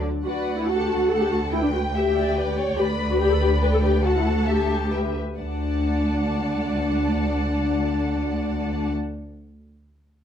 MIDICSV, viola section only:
0, 0, Header, 1, 2, 480
1, 0, Start_track
1, 0, Key_signature, 2, "major"
1, 0, Tempo, 423131
1, 281, Time_signature, 3, 2, 24, 8
1, 5071, Tempo, 459770
1, 11096, End_track
2, 0, Start_track
2, 0, Title_t, "Viola section"
2, 0, Program_c, 0, 48
2, 284, Note_on_c, 0, 66, 48
2, 622, Note_off_c, 0, 66, 0
2, 655, Note_on_c, 0, 64, 48
2, 769, Note_off_c, 0, 64, 0
2, 785, Note_on_c, 0, 66, 55
2, 897, Note_off_c, 0, 66, 0
2, 906, Note_on_c, 0, 67, 54
2, 1016, Note_on_c, 0, 66, 56
2, 1018, Note_off_c, 0, 67, 0
2, 1252, Note_off_c, 0, 66, 0
2, 1264, Note_on_c, 0, 69, 55
2, 1375, Note_off_c, 0, 69, 0
2, 1386, Note_on_c, 0, 67, 47
2, 1495, Note_off_c, 0, 67, 0
2, 1496, Note_on_c, 0, 66, 44
2, 1587, Note_off_c, 0, 66, 0
2, 1733, Note_on_c, 0, 64, 50
2, 1845, Note_off_c, 0, 64, 0
2, 1848, Note_on_c, 0, 62, 43
2, 1895, Note_off_c, 0, 62, 0
2, 1959, Note_on_c, 0, 66, 46
2, 2050, Note_off_c, 0, 66, 0
2, 2210, Note_on_c, 0, 67, 52
2, 2901, Note_off_c, 0, 67, 0
2, 3154, Note_on_c, 0, 67, 56
2, 3245, Note_off_c, 0, 67, 0
2, 3520, Note_on_c, 0, 66, 54
2, 3626, Note_off_c, 0, 66, 0
2, 3628, Note_on_c, 0, 67, 63
2, 3739, Note_off_c, 0, 67, 0
2, 3765, Note_on_c, 0, 69, 51
2, 3868, Note_on_c, 0, 67, 54
2, 3869, Note_off_c, 0, 69, 0
2, 3959, Note_off_c, 0, 67, 0
2, 4115, Note_on_c, 0, 71, 59
2, 4220, Note_off_c, 0, 71, 0
2, 4228, Note_on_c, 0, 69, 53
2, 4272, Note_off_c, 0, 69, 0
2, 4345, Note_on_c, 0, 67, 49
2, 4576, Note_off_c, 0, 67, 0
2, 4586, Note_on_c, 0, 66, 48
2, 4700, Note_off_c, 0, 66, 0
2, 4721, Note_on_c, 0, 64, 42
2, 4832, Note_off_c, 0, 64, 0
2, 4839, Note_on_c, 0, 66, 46
2, 5079, Note_off_c, 0, 66, 0
2, 5091, Note_on_c, 0, 67, 52
2, 5801, Note_off_c, 0, 67, 0
2, 6035, Note_on_c, 0, 62, 33
2, 9699, Note_off_c, 0, 62, 0
2, 11096, End_track
0, 0, End_of_file